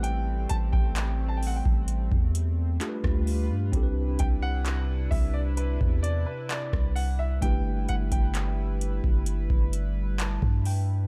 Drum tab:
HH |x-x-x-o-x-x-x-o-|x-x-x-o-x-x-x-o-|x-xxx-x-x-x-x-o-|
CP |----x-------x---|----x-------x---|----x-------x---|
SD |-------------r--|-------------r--|----------------|
BD |---o---o-o---o--|o-o---o--o---o--|o--o---o-o---o--|